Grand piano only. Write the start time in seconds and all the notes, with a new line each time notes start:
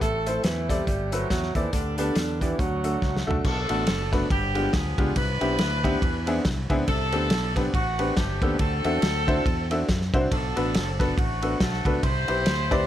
0.02 A2
0.27 C4 E4 A4 C5
0.69 C4 E4 A4 D5
1.12 C4 E4 A4 B4
1.55 C4 E4 A4 D5
1.73 D3
1.98 B3 D4 G4 B4
2.41 B3 D4 G4 D5
2.59 D3
2.84 A3 D4 F#4 A4
3.27 A3 D4 F#4 A4
3.45 B2
3.69 A3 B3 D4 F#4 A4
4.12 A3 B3 D4 F#4 B4
4.30 G2
4.55 G#3 B3 D4 F4 G4
4.98 G#3 B3 D4 F4 G4
5.16 C3
5.41 B3 C4 D4 E4 G4
5.84 B3 C4 D4 E4 G4
6.02 E3
6.27 B3 C4 D4 E4 G#4
6.70 B3 C4 D4 E4 G#4
6.88 C3
7.13 B3 C4 D4 G4 A4
7.56 B3 C4 D4 G4 B4
7.99 B3 C4 D4 G4 B4
8.42 B3 C4 D4 G4 A4
8.60 D3
8.85 C4 D4 E4 F#4 A4
9.27 C4 D4 E4 F#4 C5
9.71 C4 D4 E4 F#4 A4
10.13 C4 D4 E4 F#4 C5
10.32 B2
10.56 B3 D4 F#4 A4 B4
10.99 B3 D4 F#4 A4 B4
11.42 B3 D4 F#4 A4 B4
11.85 B3 D4 F#4 A4 B4
12.03 C3
12.28 C4 E4 G4 B4 C5
12.71 C4 E4 G4 B4 D5